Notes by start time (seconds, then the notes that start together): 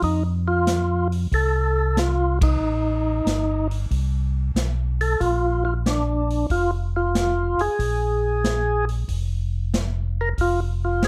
0.02 F2 D#4, kick, open hi-hat
0.48 F4
0.67 snare, closed hi-hat
1.12 open hi-hat
1.32 C2 A4, kick, open hi-hat
1.97 F4, snare, closed hi-hat
2.41 D#4, kick, ride
2.60 A1
3.25 G1, snare, closed hi-hat
3.71 open hi-hat
3.91 C2, kick, open hi-hat
4.55 B1, snare, closed hi-hat
5.01 A4, open hi-hat
5.20 A#1 F4, kick, open hi-hat
5.65 F4
5.86 D4, snare, closed hi-hat
6.30 open hi-hat
6.50 F1 F4, kick, open hi-hat
6.96 F4
7.15 snare, closed hi-hat
7.58 F1 G#4, open hi-hat
7.79 A#1, kick, open hi-hat
8.44 snare, closed hi-hat
8.89 open hi-hat
9.08 F1, kick, open hi-hat
9.74 snare, closed hi-hat
10.21 A#4
10.38 F1 F4, kick, open hi-hat
10.85 F4
11.02 G#4, snare, closed hi-hat